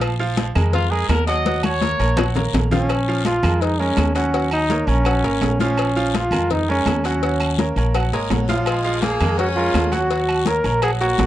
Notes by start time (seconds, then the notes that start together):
Already playing: A#1 F3 F4 F5
0.01 cowbell, low agogo, long guiro, claves
0.20 F3 F4 F5, high conga
0.37 cowbell, high conga, low timbale, low agogo, short guiro
0.55 F2 G#3 G#4 A#4, high conga, low conga, low agogo, short guiro, claves
0.73 F4, cowbell, high conga, low conga, long guiro
0.91 G#3 G#4 A#4, high conga
1.09 D#2 A#4, cowbell, high conga, low timbale, low agogo, short guiro, claves
1.27 F#3 F#4 D#5 F#5, cowbell, low agogo, short guiro
1.46 F#3 F#4 F#5, cowbell, high conga, long guiro
1.63 C#5, high conga, low agogo, claves
1.81 A#3 A#4 C#5, cowbell, high conga, low timbale, short guiro
1.99 A#1 A#3 A#4 C#5, low agogo, short guiro
2.17 F#3 F#4 F#5, cowbell, high bongo, low conga, low agogo, long guiro, claves
2.35 A#3 A#4 C#5, cowbell, low bongo, low conga
2.53 A#1, cowbell, low bongo, low conga, low timbale, low agogo, short guiro
2.71 F3 C#4 F4 F5, cowbell, low bongo, low conga, short guiro
2.89 cowbell, low agogo, long guiro, claves
3.07 F3 F4 F5, high conga
3.25 F4, cowbell, high conga, low timbale, low agogo, short guiro
3.43 F2 G#3 G#4 A#4, high conga, low conga, low agogo, short guiro, claves
3.61 D#4, cowbell, high conga, long guiro
3.79 G#3 C#4 G#4 A#4, high conga
3.97 D#2, cowbell, high conga, low timbale, low agogo, short guiro, claves
4.15 F#3 C#4 F#4 F#5, cowbell, low agogo, short guiro
4.34 F#3 F#4 F#5, cowbell, long guiro
4.51 D#4, high conga, low agogo, claves
4.70 A#3 A#4 C#5, cowbell, high conga, low timbale, short guiro
4.87 A#1 A#3 C#4 A#4 C#5, low agogo, short guiro
5.05 F#3 F#4 F#5, cowbell, high conga, low agogo, long guiro, claves
5.24 G#1 A#3 A#4 C#5, cowbell, high conga
5.41 A#1, cowbell, high conga, low timbale, low agogo, short guiro
5.59 F3 C#4 F4 F5, cowbell, high conga, short guiro
5.77 cowbell, low agogo, long guiro, claves
5.96 F3 F4 F5, high conga
6.14 F4, cowbell, high conga, low timbale, low agogo, short guiro
6.31 F2 G#3 G#4 A#4, high conga, low conga, low agogo, short guiro, claves
6.50 D#4, cowbell, high conga, low conga, long guiro
6.69 G#3 C#4 G#4 A#4, high conga
6.86 D#2, cowbell, high conga, low timbale, low agogo, short guiro, claves
7.04 F#3 C#4 F#4 F#5, cowbell, low agogo, short guiro
7.23 F#3 F#4 F#5, cowbell, high conga, long guiro
7.40 high conga, low agogo, claves
7.59 A#3 A#4 C#5, cowbell, high conga, low timbale, short guiro
7.76 A#1 A#3 A#4 C#5, low agogo, short guiro
7.94 F#3 F#4 F#5, cowbell, high conga, low agogo, long guiro, claves
8.13 G#1 G#3 A#3 A#4 C#5, cowbell, high conga
8.30 A#1 F#3, cowbell, high conga, low timbale, low agogo, short guiro
8.48 F3 F4 F5, cowbell, high conga, short guiro
8.66 G#3, cowbell, high conga, low agogo, long guiro, claves
8.85 F3 F4 F5, high conga
9.02 A#3 G#4, cowbell, high conga, low timbale, low agogo, short guiro
9.20 F2 G#3 G#4 A#4, high conga, low conga, low agogo, short guiro, claves
9.38 C#4 F#4, cowbell, high conga, long guiro
9.56 G#3 F4 G#4 A#4, high conga
9.74 D#2, cowbell, high conga, low timbale, low agogo, short guiro, claves
9.92 F#3 F#4 F#5, cowbell, high conga, low agogo, short guiro
10.11 F#3 F#4 F#5, cowbell, high conga, long guiro
10.28 high conga, low agogo, claves
10.46 A#3 A#4 C#5, cowbell, high conga, low timbale, short guiro
10.64 A#1 A#3 A#4 C#5, low agogo, short guiro
10.82 F#3 F#4 G#4 F#5, cowbell, high conga, low agogo, long guiro, claves
11.01 A#3 F#4 A#4 C#5, cowbell, high conga
11.18 A#1, cowbell, high conga, low timbale, low agogo, short guiro